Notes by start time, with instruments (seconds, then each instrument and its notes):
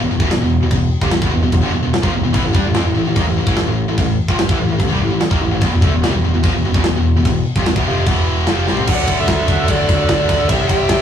0.00 picked electric bass E1, distorted electric guitar E2 B2
0.11 picked electric bass E1, distorted electric guitar E2 B2
0.20 picked electric bass E1, distorted electric guitar E2 B2, kick
0.31 picked electric bass E1, distorted electric guitar E2 B2, snare, crash
0.40 picked electric bass E1, distorted electric guitar E2 B2
0.60 picked electric bass E1, distorted electric guitar E2 B2
0.71 picked electric bass E1, distorted electric guitar E2 B2, kick, crash
1.01 picked electric bass F1, distorted electric guitar F2 C3, kick
1.11 picked electric bass E1, distorted electric guitar E2 B2, snare, crash
1.22 picked electric bass E1, distorted electric guitar E2 B2, kick
1.32 picked electric bass E1, distorted electric guitar E2 B2
1.42 picked electric bass E1, distorted electric guitar E2 B2
1.52 picked electric bass E1, distorted electric guitar E2 B2, kick, crash
1.62 picked electric bass G1, distorted electric guitar G2 D3
1.73 picked electric bass E1, distorted electric guitar E2 B2
1.83 picked electric bass E1, distorted electric guitar E2 B2
1.93 muted distorted electric guitar stroke, muted picked electric bass stroke, muted overdriven electric guitar stroke, snare, crash
2.02 picked electric bass A#1, distorted electric guitar A#2 F3, kick
2.13 picked electric bass E1, distorted electric guitar E2 B2
2.23 picked electric bass E1, distorted electric guitar E2 B2
2.33 picked electric bass A1, distorted electric guitar A2 E3, kick, crash
2.44 picked electric bass A1, distorted electric guitar A2 E3
2.53 picked electric bass G2, distorted electric guitar G3 D4, kick
2.64 picked electric bass A1, distorted electric guitar A2 E3
2.74 picked electric bass F2, distorted electric guitar F3 C4, snare, crash
2.84 picked electric bass A1, distorted electric guitar A2 E3
2.94 picked electric bass A1, distorted electric guitar A2 E3
3.05 picked electric bass A1, distorted electric guitar A2 E3
3.16 picked electric bass D#2, distorted electric guitar D#3 A#3, kick, crash
3.26 picked electric bass A1, distorted electric guitar A2 E3
3.36 picked electric bass A1, distorted electric guitar A2 E3
3.46 picked electric bass A1, distorted electric guitar A2 E3, kick
3.56 picked electric bass A1, distorted electric guitar A2 E3, snare, crash
3.67 picked electric bass A1, distorted electric guitar A2 E3
3.88 picked electric bass A1, distorted electric guitar A2 E3
3.98 picked electric bass A1, distorted electric guitar A2 E3, kick, crash
4.28 picked electric bass A#1, distorted electric guitar A#2 F3, kick
4.39 picked electric bass A1, distorted electric guitar A2 E3, snare, crash
4.49 picked electric bass A1, distorted electric guitar A2 E3, kick
4.59 picked electric bass A1, distorted electric guitar A2 E3
4.68 picked electric bass A1, distorted electric guitar A2 E3
4.73 distorted electric guitar E3
4.78 picked electric bass A1, distorted electric guitar A2 E3, kick, crash
4.83 distorted electric guitar E3
4.88 picked electric bass C2, distorted electric guitar C3 G3
4.93 distorted electric guitar C3
5.00 picked electric bass A1, distorted electric guitar A2 E3
5.09 picked electric bass A1, distorted electric guitar A2 E3
5.20 muted distorted electric guitar stroke, muted overdriven electric guitar stroke, muted picked electric bass stroke, snare, crash
5.30 picked electric bass D#2, distorted electric guitar D#3 A#3, kick
5.40 picked electric bass A1, distorted electric guitar A2 E3
5.51 picked electric bass A1, distorted electric guitar A2 E3
5.60 picked electric bass E1, distorted electric guitar E2 B2, kick, crash
5.71 picked electric bass E1, distorted electric guitar E2 B2
5.82 picked electric bass D2, distorted electric guitar D3 A3, kick
5.92 picked electric bass E1, distorted electric guitar E2 B2
6.01 picked electric bass C2, distorted electric guitar C3 G3, snare, crash
6.13 picked electric bass E1, distorted electric guitar E2 B2
6.22 picked electric bass E1, distorted electric guitar E2 B2
6.33 picked electric bass E1, distorted electric guitar E2 B2
6.43 picked electric bass A#1, distorted electric guitar A#2 F3, kick, crash
6.54 picked electric bass E1, distorted electric guitar E2 B2
6.64 picked electric bass E1, distorted electric guitar E2 B2
6.74 picked electric bass E1, distorted electric guitar E2 B2, kick
6.84 picked electric bass E1, distorted electric guitar E2 B2, snare, crash
6.96 picked electric bass E1, distorted electric guitar E2 B2
7.17 picked electric bass E1, distorted electric guitar E2 B2
7.25 picked electric bass E1, distorted electric guitar E2 B2, kick, crash
7.56 picked electric bass F1, distorted electric guitar F2 C3, kick
7.66 picked electric bass E1, distorted electric guitar E2 B2, snare, crash
7.76 picked electric bass E1, distorted electric guitar E2 B2, kick
7.86 picked electric bass F1, distorted electric guitar F2 C3 F3
8.06 picked electric bass E1, distorted electric guitar E2 B2 E3, kick, crash
8.47 picked electric bass F1, distorted electric guitar F2 C3 F3, snare, crash
8.67 picked electric bass C2, distorted electric guitar C3 G3 C4, snare
8.77 floor tom
8.86 picked electric bass D2, distorted electric guitar D3 F#3 A3, string section D4 F#4 A4 F#5, lead electric guitar F#5, kick, crash
8.90 distorted electric guitar D4, lead electric guitar D5
8.95 distorted electric guitar D3 F#3
9.04 picked electric bass D2, distorted electric guitar D3 F#3, ride
9.08 distorted electric guitar D3 F#3, kick
9.19 distorted electric guitar D3 F#3, lead electric guitar A4 E5
9.27 picked electric bass D2, distorted electric guitar D3 F#3, kick, snare, ride
9.35 distorted electric guitar D3 F#3
9.42 distorted electric guitar D3 F#3
9.48 picked electric bass D2, distorted electric guitar D3 F#3 A3 D4, kick, ride
9.57 distorted electric guitar D3 F#3
9.65 picked electric bass D2, distorted electric guitar D3 F#3, kick, ride
9.69 distorted electric guitar F#3, overdriven electric guitar A3 D4, lead electric guitar A4 D5
9.74 distorted electric guitar D3
9.81 distorted electric guitar D3 F#3
9.89 picked electric bass D2, distorted electric guitar D3 F#3, kick, ride
9.96 distorted electric guitar D3 F#3
10.03 distorted electric guitar D3 F#3
10.09 picked electric bass D2, distorted electric guitar D3 F#3 A3 D4, kick, snare, ride
10.19 distorted electric guitar D3 F#3
10.26 picked electric bass D2, distorted electric guitar D3 F#3, kick, ride
10.35 distorted electric guitar D3 F#3
10.42 distorted electric guitar D3 F#3
10.49 picked electric bass C2, distorted electric guitar C3 G3 C4, string section E4 G4 C5 G5, overdriven electric guitar E4, lead electric guitar C5 E5, kick, ride
10.58 distorted electric guitar C3 G3
10.65 distorted electric guitar C3 G3, lead electric guitar E5 G5, ride
10.69 picked electric bass C2, distorted electric guitar C3, kick
10.75 distorted electric guitar G3
10.80 distorted electric guitar C3 G3
10.89 distorted electric guitar C3 G3, picked electric bass C3, kick, snare, ride
10.96 distorted electric guitar C3 G3